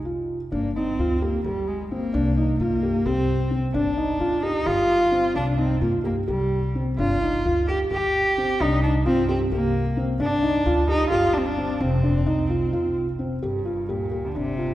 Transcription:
Already playing: upright bass F1
0.05 felt piano F4
0.51 upright bass G1, cello A#3, felt piano D4
0.76 cello C4, felt piano D#4
0.99 upright bass D2, felt piano F4
1.22 cello A#3, felt piano G4
1.44 upright bass G1, cello G3, felt piano G4
1.68 cello G#3
1.91 cello A#3, felt piano C4
2.14 upright bass C2, felt piano D4
2.37 felt piano D#4
2.59 upright bass G2, cello A#3, felt piano F4
2.83 felt piano G4
3.06 upright bass C2, cello C4, felt piano G4
3.51 felt piano C4
3.74 upright bass G1, cello D4, felt piano D4
3.97 felt piano D#4
4.20 upright bass D2, felt piano F4
4.43 cello D#4, felt piano G4
4.66 upright bass G1, cello F4, felt piano G4
5.12 felt piano C4
5.35 upright bass C2, felt piano D4, cello D4
5.58 cello C4, felt piano D#4
5.81 upright bass G2, cello A#3, felt piano F4
6.04 cello A#3, felt piano G4
6.28 upright bass C2, cello G3, felt piano G4
6.75 felt piano C4
6.99 upright bass G1, felt piano D4, cello F4
7.22 felt piano D#4
7.45 upright bass D2, felt piano F4
7.68 cello G4, felt piano G4
7.90 upright bass G1, felt piano G4, cello G4
8.38 felt piano C4
8.60 upright bass C2, felt piano D4, cello D#4
8.83 cello D4, felt piano D#4
9.06 upright bass G2, cello C4, felt piano F4
9.28 cello C4, felt piano G4
9.52 upright bass C2, cello A#3, felt piano G4
9.97 felt piano C4
10.20 upright bass G1, felt piano D4, cello D4
10.43 felt piano D#4
10.66 upright bass D2, felt piano F4
10.89 cello D#4, felt piano G4
11.11 upright bass G1, cello F4, felt piano G4
11.34 cello D4
11.38 cello C4
11.46 cello D4
11.57 felt piano C4
11.80 upright bass F1, cello C4, felt piano C4
12.03 felt piano D4
12.26 upright bass C2, felt piano D#4
12.50 felt piano F4
12.73 upright bass F1, felt piano F4
13.19 felt piano C4
13.42 upright bass G1, cello G2, felt piano G4
13.65 felt piano F4
13.89 upright bass D2, cello A#2, felt piano G4
14.11 felt piano G4
14.27 cello D3
14.35 upright bass G1, cello C3, felt piano D4
14.58 felt piano F4

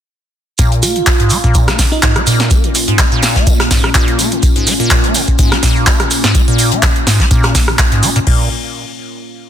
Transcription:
0.58 acid bass A#2, analog synth pad A#2 A#3 C#4 F4, kick, closed hi-hat, tambourine, maracas
0.72 closed hi-hat, maracas
0.83 acid bass A#3, fm electric piano F4, open hi-hat, tambourine, maracas
0.96 acid bass C#3, closed hi-hat, maracas
1.06 kick, snare, clap, closed hi-hat, tambourine, maracas
1.19 acid bass G#2, closed hi-hat, maracas
1.30 acid bass A#3, open hi-hat, tambourine, maracas
1.44 acid bass A#2, kick, closed hi-hat, maracas
1.54 kick, closed hi-hat, tambourine, maracas
1.67 acid bass A#3, cross-stick, snare, closed hi-hat, maracas
1.79 acid bass C#3, kick, snare, open hi-hat, tambourine, maracas
1.92 fm electric piano D#4, maracas
2.02 acid bass G#2, fm electric piano D#4, kick, snare, clap, closed hi-hat, tambourine, maracas
2.15 acid bass A#3, cross-stick, closed hi-hat, maracas
2.27 acid bass A#2, open hi-hat, tambourine, maracas
2.40 snare, closed hi-hat, maracas
2.50 acid bass A#3, kick, closed hi-hat, tambourine, maracas
2.64 acid bass C#3, closed hi-hat, maracas
2.75 open hi-hat, tambourine, maracas
2.87 acid bass G#2, closed hi-hat, maracas
2.99 acid bass A#3, kick, snare, clap, closed hi-hat, tambourine, maracas
3.12 acid bass A#2, closed hi-hat, maracas
3.23 snare, open hi-hat, tambourine, maracas
3.36 acid bass A#3, kick, snare, closed hi-hat, maracas
3.46 acid bass C#3, kick, closed hi-hat, tambourine, maracas
3.60 cross-stick, snare, closed hi-hat, maracas
3.71 acid bass G#2, kick, snare, open hi-hat, tambourine, maracas
3.84 acid bass A#3, cross-stick, maracas
3.94 acid bass A#2, kick, snare, clap, closed hi-hat, tambourine, maracas
4.07 snare, closed hi-hat, maracas
4.19 acid bass A#3, open hi-hat, tambourine, maracas
4.31 acid bass C#3, closed hi-hat, maracas
4.43 kick, closed hi-hat, tambourine, maracas
4.55 acid bass G#2, closed hi-hat, maracas
4.67 acid bass A#3, open hi-hat, tambourine, maracas
4.80 acid bass A#2, closed hi-hat, maracas
4.90 kick, snare, clap, closed hi-hat, tambourine, maracas
5.04 acid bass A#3, closed hi-hat, maracas
5.14 acid bass C#3, open hi-hat, tambourine, maracas
5.28 kick, closed hi-hat, maracas
5.38 acid bass G#2, kick, closed hi-hat, tambourine, maracas
5.52 acid bass A#3, cross-stick, snare, closed hi-hat, maracas
5.63 acid bass A#2, kick, snare, open hi-hat, tambourine, maracas
5.76 maracas
5.86 acid bass A#3, kick, snare, clap, closed hi-hat, tambourine, maracas
6.00 acid bass C#3, cross-stick, closed hi-hat, maracas
6.11 open hi-hat, tambourine, maracas
6.24 acid bass G#2, snare, closed hi-hat, maracas
6.35 acid bass A#3, kick, closed hi-hat, tambourine, maracas
6.48 acid bass A#2, closed hi-hat, maracas
6.58 open hi-hat, tambourine, maracas
6.71 acid bass A#3, closed hi-hat, maracas
6.82 acid bass C#3, kick, snare, clap, closed hi-hat, tambourine, maracas
6.96 closed hi-hat, maracas
7.07 acid bass G#2, snare, open hi-hat, tambourine, maracas
7.20 acid bass A#3, kick, snare, closed hi-hat, maracas
7.31 acid bass A#2, kick, closed hi-hat, tambourine, maracas
7.43 cross-stick, snare, closed hi-hat, maracas
7.55 acid bass A#3, kick, snare, open hi-hat, tambourine, maracas
7.68 acid bass C#3, cross-stick, maracas
7.78 kick, snare, clap, closed hi-hat, tambourine, maracas
7.92 acid bass G#2, snare, closed hi-hat, maracas
8.03 acid bass A#3, open hi-hat, tambourine, maracas
8.16 acid bass A#2, closed hi-hat, maracas
8.27 acid bass A#2, kick, crash

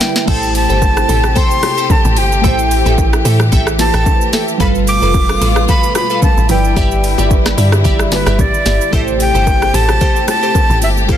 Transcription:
Already playing: string section D3 G3 E4, synth keys G3 E4 B4 E5, flute G5
0.01 snare, open hi-hat, high bongo, low bongo, shaker
0.16 snare, shaker
0.25 log drum bass A1, string section C3 A3 G4, synth keys A3 E4, synth pluck A4 C5 G5, flute A5, kick, crash, low conga
0.29 synth keys G4 C5
0.43 shaker
0.55 flute A5, open hi-hat, shaker
0.69 log drum bass G1, synth pluck A4 C5 G5, shaker
0.82 kick, high bongo, shaker
0.97 cross-stick, high bongo, shaker
1.09 log drum bass A1, synth pluck A4 C5 G5, open hi-hat, shaker
1.24 cross-stick, low bongo, shaker
1.35 synth pluck A4 C5 G5, flute C6, kick, low conga, shaker
1.51 shaker
1.63 cross-stick, open hi-hat, low bongo, shaker
1.78 synth pluck A4 C5 G5, shaker
1.90 flute A5, kick, high bongo, low conga, shaker
2.05 log drum bass A1, shaker
2.17 log drum bass G1, flute G5, open hi-hat, low bongo, shaker
2.32 shaker
2.42 log drum bass A1, string section E3, synth keys A3 E4 G4, synth pluck A4 E5 G5, kick, low conga, shaker
2.47 synth keys C5
2.59 shaker
2.71 open hi-hat, shaker
2.86 log drum bass A1, synth pluck A4 E5 G5, shaker
2.98 kick, high bongo, shaker
3.13 cross-stick, high bongo, shaker
3.25 log drum bass A2, synth pluck A4 E5 G5, open hi-hat, shaker
3.40 cross-stick, low bongo, shaker
3.52 log drum bass A1, synth pluck A4 E5 G5, kick, low conga, shaker
3.67 cross-stick, shaker
3.78 synth keys A3 E4 G4 B4, flute A5, snare, open hi-hat, low bongo, shaker
3.88 synth keys C5
3.94 log drum bass A1, synth pluck A4 E5 G5, cross-stick, shaker
4.06 kick, high bongo, low conga, shaker
4.21 shaker
4.33 synth pluck A4 E5 G5, snare, open hi-hat, low bongo, shaker
4.48 shaker
4.58 log drum bass G1, string section B2 A3 F4, synth keys G3 F4 A4, synth pluck A4 B4 F5, flute B5, kick, low conga, shaker
4.64 synth keys B4
4.75 shaker
4.87 flute D6, open hi-hat, shaker
5.02 log drum bass F1, synth pluck A4 B4 F5, shaker
5.14 kick, high bongo, shaker
5.29 cross-stick, high bongo, shaker
5.41 log drum bass A1, synth pluck A4 B4 F5, open hi-hat, shaker
5.56 cross-stick, low bongo, shaker
5.68 synth pluck A4 B4 F5, flute B5, kick, low conga, shaker
5.83 shaker
5.95 flute B5, cross-stick, open hi-hat, low bongo, shaker
6.10 synth pluck A4 B4 F5, shaker
6.22 flute A5, kick, high bongo, low conga, shaker
6.37 log drum bass A1, shaker
6.47 log drum bass G1, string section D3 G3 E4, synth keys F3 E4 B4, flute G5, open hi-hat, low bongo, shaker
6.53 synth keys G3 D5
6.64 shaker
6.76 log drum bass G1, synth pluck G4 D5 E5, kick, low conga, shaker
6.91 shaker
7.04 open hi-hat, shaker
7.18 log drum bass G1, synth pluck G4 D5 E5, low bongo, shaker
7.31 kick, high bongo, shaker
7.46 cross-stick, snare, high bongo, shaker
7.57 log drum bass G2, synth pluck G4 D5 E5, open hi-hat, shaker
7.72 cross-stick, low bongo, shaker
7.84 log drum bass G1, synth pluck G4 D5 E5, kick, low conga, shaker
7.99 cross-stick, shaker
8.12 flute B4, snare, open hi-hat, low bongo, shaker
8.26 log drum bass G1, synth pluck G4 D5 E5, cross-stick, shaker
8.39 log drum bass A1, flute D5, kick, high bongo, low conga, shaker
8.54 shaker
8.65 log drum bass G1, synth pluck G4 D5 E5, snare, open hi-hat, low bongo, shaker
8.81 shaker
8.90 log drum bass A1, string section C3 A3 G4, synth keys A3 E4 G4, synth pluck G4 A4 C5, kick, low conga, shaker
8.95 synth keys C5, flute E5
9.08 shaker
9.20 flute G5, open hi-hat, shaker
9.35 log drum bass G1, synth pluck G4 A4 C5, shaker
9.47 kick, high bongo, shaker
9.62 cross-stick, high bongo, shaker
9.74 log drum bass A1, synth pluck G4 A4 C5, flute A5, open hi-hat, shaker
9.89 cross-stick, low bongo, shaker
10.01 synth pluck G4 A4 C5, kick, low conga, shaker
10.16 shaker
10.28 flute A5, cross-stick, open hi-hat, low bongo, shaker
10.43 synth pluck G4 A4 C5, shaker
10.55 kick, high bongo, low conga, shaker
10.70 log drum bass A1, shaker
10.82 log drum bass G1, flute E5, open hi-hat, low bongo, shaker
10.97 shaker
11.06 log drum bass A1, synth keys E3 A3, string section E3, synth pluck E4 G4 A4, kick, low conga, shaker
11.10 synth keys G4 C5, flute F5

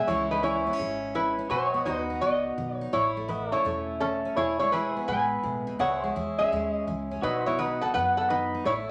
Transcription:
0.07 upright bass C#2, steel-string acoustic guitar C#3 E3 G#3 C#4 E4, resonator guitar played with a steel bar E4 C#5
0.31 steel-string acoustic guitar G#3, resonator guitar played with a steel bar D#4 B4
0.43 steel-string acoustic guitar E3 E4, resonator guitar played with a steel bar E4 C#5, pedal steel guitar B4 E5 G#5
0.67 steel-string acoustic guitar B3, pedal steel guitar C#5
0.73 steel-string acoustic guitar C#4
0.79 upright bass G#1, steel-string acoustic guitar G#2 G#3
1.15 steel-string acoustic guitar E3, resonator guitar played with a steel bar E4 B4
1.39 steel-string acoustic guitar C#4
1.50 upright bass B1, steel-string acoustic guitar B2 F#4, resonator guitar played with a steel bar F#4 C#5, pedal steel guitar C#5 E5 G#5
1.71 steel-string acoustic guitar B3, pedal steel guitar B4 D#5
1.77 pedal steel guitar F#5
1.85 upright bass D#2, steel-string acoustic guitar D#3 F#4, resonator guitar played with a steel bar D#4 B4
2.10 steel-string acoustic guitar D#4
2.21 upright bass C#2, steel-string acoustic guitar F#2 B3, resonator guitar played with a steel bar F#4 D#5
2.58 upright bass B1, steel-string acoustic guitar D#3
2.76 resonator guitar played with a steel bar C#5
2.81 steel-string acoustic guitar D#4
2.93 upright bass A1, steel-string acoustic guitar A2 E4, resonator guitar played with a steel bar E4 C#5
3.17 steel-string acoustic guitar A3
3.28 steel-string acoustic guitar E3 E4, pedal steel guitar B4 D#5 F#5
3.52 steel-string acoustic guitar C#4, resonator guitar played with a steel bar E4 C#5, pedal steel guitar A4 C#5 E5
3.65 upright bass E1, steel-string acoustic guitar E2 A3
4.00 steel-string acoustic guitar E3, resonator guitar played with a steel bar C#4 A4
4.25 steel-string acoustic guitar C#4
4.37 upright bass E1, steel-string acoustic guitar E2 G#4, resonator guitar played with a steel bar E4 C#5
4.59 steel-string acoustic guitar G#3, resonator guitar played with a steel bar E4 C#5
4.72 steel-string acoustic guitar E3 G#4, resonator guitar played with a steel bar E4 B4, pedal steel guitar G#4 C#5 E5
4.97 steel-string acoustic guitar B3, pedal steel guitar B4
5.08 upright bass A1, steel-string acoustic guitar B2 G#3, resonator guitar played with a steel bar B4 G#5
5.43 upright bass B1, steel-string acoustic guitar A2
5.67 steel-string acoustic guitar B2
5.79 upright bass C#2, steel-string acoustic guitar C#3 E4, pedal steel guitar G#4 B4 E5, resonator guitar played with a steel bar C#5 F#5
6.04 steel-string acoustic guitar G#3, pedal steel guitar C#5
6.16 upright bass E2, steel-string acoustic guitar E3 E4
6.38 steel-string acoustic guitar C#4, resonator guitar played with a steel bar G#4 E5
6.51 upright bass D#2, steel-string acoustic guitar G#2 G#3
6.71 resonator guitar played with a steel bar D#5
6.87 upright bass C#2, steel-string acoustic guitar E3
7.11 steel-string acoustic guitar C#4
7.22 upright bass B1, steel-string acoustic guitar B2 F#4, resonator guitar played with a steel bar D#4 B4, pedal steel guitar F#4 C#5 E5
7.45 steel-string acoustic guitar B3, resonator guitar played with a steel bar E4 C#5, pedal steel guitar B4 D#5
7.59 steel-string acoustic guitar D#3 F#4, resonator guitar played with a steel bar D#4 B4
7.81 steel-string acoustic guitar D#4, resonator guitar played with a steel bar A4 F#5
7.94 steel-string acoustic guitar F#2 B3, upright bass F#2, resonator guitar played with a steel bar B4 F#5
8.17 resonator guitar played with a steel bar A4 F#5
8.30 steel-string acoustic guitar D#3, resonator guitar played with a steel bar D#4 B4
8.54 steel-string acoustic guitar D#4
8.65 upright bass A1, steel-string acoustic guitar A2 E4, pedal steel guitar A3 C#5 E5, resonator guitar played with a steel bar E4 C#5

